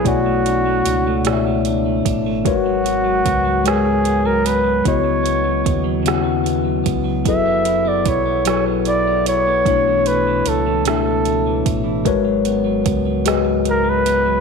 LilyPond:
<<
  \new Staff \with { instrumentName = "Flugelhorn" } { \time 6/8 \key b \dorian \tempo 4. = 50 fis'2 r4 | fis'4. gis'8. ais'16 b'8 | cis''4. r4. | e''8. d''16 cis''8 cis''8 d''8 cis''8~ |
cis''8 b'8 a'8 a'4 r8 | r2 ais'16 b'8. | }
  \new Staff \with { instrumentName = "Tine electric piano" } { \time 6/8 \key b \dorian <b, a e' cis'' d''>4 r8 <b, a e' cis'' d'' e''>4 r8 | <gis fis' ais' b' cis''>4 r8 <gis fis' ais' b' cis''>4 r8 | <cis b e' fis' dis''>4 r8 <cis b e' fis' fis''>4 r8 | <fis e' gis' a' b'>4 r8 <fis e' gis' a' b'>4 r8 |
<b, a d' e' cis''>4 r8 <b, a d' e' e''>4 r8 | <gis fis' ais' b' cis''>4 r8 <gis fis' gis' b' dis''>4 r8 | }
  \new Staff \with { instrumentName = "Clean electric guitar" } { \clef bass \time 6/8 \key b \dorian b,16 a16 d'16 a16 d'16 a16 b,16 a16 d'16 a16 d'16 a16 | gis,16 fis16 b16 fis16 b16 fis16 gis,16 fis16 b16 fis16 b16 fis16 | cis16 fis16 b16 fis16 b16 fis16 cis16 fis16 b16 fis16 b16 fis16 | fis16 b16 e'16 b16 e'16 b16 fis16 b16 e'16 b16 e'16 b16 |
b,16 e16 a16 e16 a16 e16 b,16 e16 a16 e16 a16 e16 | gis,16 fis16 b16 fis16 b16 fis16 gis,16 fis16 b16 fis16 b16 fis16 | }
  \new Staff \with { instrumentName = "Fingered electric bass" } { \clef bass \time 6/8 \key b \dorian b,,4 cis,4. a,,8 | gis,,4 cis,2 | cis,4 dis,4. cis,8 | fis,,4 b,,2 |
b,,4 cis,4. a,,8 | gis,,4 cis,2 | }
  \new DrumStaff \with { instrumentName = "Drums" } \drummode { \time 6/8 <hh bd>8 hh8 hh8 <hh ss>8 hh8 <hh bd>8 | <hh bd>8 hh8 <hh bd>8 <hh ss>8 hh8 hh8 | <hh bd>8 hh8 <hh bd>8 <hh ss>8 hh8 <hh bd>8 | <hh bd>8 hh8 <hh bd>8 <hh ss>8 hh8 hh8 |
<hh bd>8 hh8 hh8 <hh ss>8 hh8 <hh bd>8 | <hh bd>8 hh8 <hh bd>8 <hh ss>8 hh8 hh8 | }
>>